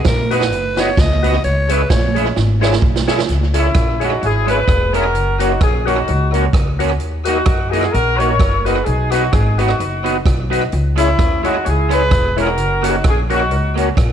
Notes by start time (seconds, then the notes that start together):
0.04 A#1 A#4, kick, snare, closed hi-hat
0.31 B3 D#4 F#4 B4 D#5, closed hi-hat
0.41 snare
0.52 F#1, muted clean electric guitar stroke, closed hi-hat
0.77 B3 D#4 F#4 B4 C#5 D#5, snare, closed hi-hat
0.81 F#4
0.97 C#2 D#5, muted clean electric guitar stroke, kick, snare, closed hi-hat
1.23 B3 D#4 F#4 B4 D#5, closed hi-hat
1.44 C#2 C#5, closed hi-hat
1.69 G#3 C#4 E4 G#4 B4 C#5 E5, closed hi-hat
1.90 A#1 C#5, kick, snare, closed hi-hat
2.15 G#3 C#4 E4 G#4 C#5 E5, closed hi-hat
2.36 G#1, muted clean electric guitar stroke, snare
2.61 G#3 C#4 E4 G#4 C#5 E5, snare
2.73 snare
2.82 B1, muted clean electric guitar stroke, kick
2.96 snare
3.08 G#3 C#4 E4 G#4 C#5 E5, snare
3.19 snare
3.29 C#2, closed hi-hat
3.54 G#3 C#4 E4 G#4 C#5 E5, closed hi-hat
3.74 A#1, kick, cross-stick, closed hi-hat
4.00 G#3 C#4 D#4 E4 G#4 C#5 E5, closed hi-hat
4.04 F#4
4.21 G#1 E4 G#4 C#5 E5, closed hi-hat
4.46 G#3 C#4 E4 G#4 B4 C#5 E5, closed hi-hat
4.68 E1, muted clean electric guitar stroke, kick, cross-stick, closed hi-hat
4.93 G#3 C#4 E4 F#4 G#4 A#4 C#5 E5, closed hi-hat
5.15 F#1, closed hi-hat
5.39 A#3 C#4 D#4 F#4 A#4 C#5, closed hi-hat
5.61 A#1 C#4 G#4, kick, cross-stick, closed hi-hat
5.86 A#3 C#4 D#4 F#4 A#4 C#5, closed hi-hat
6.07 C#2 A#4 C#5, muted clean electric guitar stroke, closed hi-hat
6.32 A#3 C#4 F#4 A#4 C#5, closed hi-hat
6.53 C#2, muted clean electric guitar stroke, kick, cross-stick, closed hi-hat
6.79 A#3 C#4 F#4 A#4 C#5, closed hi-hat
7.00 D#2, closed hi-hat
7.25 A#3 D#4 F#4 A#4 D#5, closed hi-hat
7.46 F#2, kick, cross-stick, closed hi-hat
7.70 A#3 D#4 E4 F#4 G#4 A#4 D#5, closed hi-hat
7.75 F#4
7.83 cross-stick
7.92 A#1 F#4 A#4 D#5, muted clean electric guitar stroke, closed hi-hat
8.17 A#3 D#4 F#4 A#4 C#5 D#5, closed hi-hat
8.22 F#4
8.40 F#1, muted clean electric guitar stroke, kick, cross-stick, closed hi-hat
8.65 A#3 D#4 F#4 G#4 A#4 B4 D#5, closed hi-hat
8.85 B1 D#4 G#4, closed hi-hat
9.11 B3 D#4 F#4 B4 D#5, closed hi-hat
9.33 G#1 D#4 G#4, kick, cross-stick, closed hi-hat
9.58 B3 D#4 F#4 B4 D#5, closed hi-hat
9.69 cross-stick
9.79 F#1 B4 D#5, muted clean electric guitar stroke, closed hi-hat
10.04 B3 D#4 F#4 B4 D#5, closed hi-hat
10.26 B1, muted clean electric guitar stroke, kick, cross-stick, closed hi-hat
10.50 B3 D#4 F#4 B4 D#5, closed hi-hat
10.72 C#2, closed hi-hat
10.96 G#3 C#4 E4 G#4 C#5, closed hi-hat
11.19 D#2, kick, cross-stick, closed hi-hat
11.43 G#3 C#4 D#4 E4 F#4 G#4 C#5, closed hi-hat
11.64 C#2 E4 G#4 C#5, muted clean electric guitar stroke, closed hi-hat
11.89 G#3 C#4 E4 G#4 C#5, cross-stick, closed hi-hat
11.93 B4
12.11 E1, muted clean electric guitar stroke, kick, cross-stick, closed hi-hat
12.36 G#3 C#4 E4 F#4 G#4 A#4 C#5, closed hi-hat
12.57 F#1, closed hi-hat
12.82 A#3 C#4 D#4 F#4 A#4 C#5, closed hi-hat
12.87 F#4
13.04 A#1 C#4, kick, cross-stick, closed hi-hat
13.09 G#4
13.30 A#3 C#4 D#4 F#4 A#4 C#5, closed hi-hat
13.51 C#2 A#4 C#5, muted clean electric guitar stroke, closed hi-hat
13.76 A#3 C#4 F#4 A#4 C#5, closed hi-hat
13.96 A#1, muted clean electric guitar stroke, kick, cross-stick, closed hi-hat